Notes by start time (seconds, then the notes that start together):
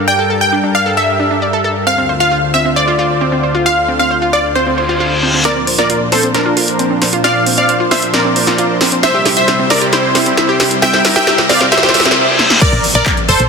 Already playing: G2 G3 A4 A#4
0.08 D5 G5
0.19 A4
0.30 A4
0.41 G5
0.52 D4
0.64 D4
0.75 D5 F5
0.86 A4
0.97 A4 E5
1.20 D4
1.31 D4
1.42 D5
1.53 A4
1.64 A4
1.87 D2 D3 C4 F4 C5 F5
1.98 C4
2.09 C5
2.20 F4 F5
2.32 F4
2.54 C4 E5
2.65 C4
2.76 C5 D5
2.88 F4
2.99 F4
3.21 C4
3.32 C4
3.43 C5
3.55 F4
3.66 F4 F5
3.88 C4
3.99 C4 F5
4.11 C5
4.22 F4
4.33 F4 D5
4.55 C4 C5, reverse cymbal
4.67 C4
4.78 C5
4.89 F4
5.00 F4
5.23 C4
5.34 C4
5.45 A#2 F3 C4 D4 A#4 C5 D5, snare, closed hi-hat, riser
5.56 C4
5.67 C5, open hi-hat
5.78 F4 A#4 D5, snare, closed hi-hat
5.90 F4, closed hi-hat
6.12 C4 A4 C5, snare, open hi-hat
6.23 C4, closed hi-hat
6.34 D4 A#4 C5, snare, closed hi-hat
6.46 F4
6.57 F4, open hi-hat
6.68 closed hi-hat
6.79 C4, closed hi-hat
6.90 C4
7.02 C5, snare, open hi-hat
7.13 F4, closed hi-hat
7.24 F4 D5 F5, snare, closed hi-hat
7.46 C4, open hi-hat
7.58 C4 D5 F5, closed hi-hat
7.69 C5, closed hi-hat
7.80 F4
7.91 F4 C5 E5, snare, open hi-hat
8.02 closed hi-hat
8.14 C4 A#4 D5, snare, closed hi-hat
8.25 C4
8.36 C5, open hi-hat
8.47 F4, snare, closed hi-hat
8.58 F4, closed hi-hat
8.81 C4, snare, open hi-hat
8.92 C4, closed hi-hat
9.03 C3 G3 E4 C5 E5, snare, closed hi-hat
9.14 G4
9.26 G4, snare, open hi-hat
9.37 C5 E5, closed hi-hat
9.48 C4, snare, closed hi-hat
9.59 C4
9.70 A#4 D5 E5, snare, open hi-hat
9.81 G4, closed hi-hat
9.93 E4 G4 C5, snare, closed hi-hat
10.15 C4, snare, open hi-hat
10.26 C4, closed hi-hat
10.37 E5, snare, closed hi-hat
10.49 G4
10.60 G4, snare, open hi-hat
10.71 closed hi-hat
10.82 C4 A#4 E5 G5, snare, closed hi-hat
10.93 C4, snare
11.05 E5, snare, open hi-hat
11.16 G4 E5 G5, snare, closed hi-hat
11.27 G4, snare, closed hi-hat
11.38 snare
11.49 C4 D5 F5, snare, open hi-hat
11.61 C4, snare, closed hi-hat
11.72 C5 E5, snare, closed hi-hat, reverse cymbal
11.77 snare
11.83 G4, snare
11.89 snare
11.94 E5, snare, open hi-hat
12.00 snare
12.05 C4, snare, closed hi-hat
12.11 snare
12.39 snare
12.50 snare
12.61 A#4 D5, kick, closed hi-hat, crash, impact
12.73 A#1, closed hi-hat
12.84 open hi-hat
12.95 A#1 A#4 D5, closed hi-hat
13.06 kick, clap, closed hi-hat
13.17 closed hi-hat
13.29 F1 A4 C5, open hi-hat
13.40 A#1, closed hi-hat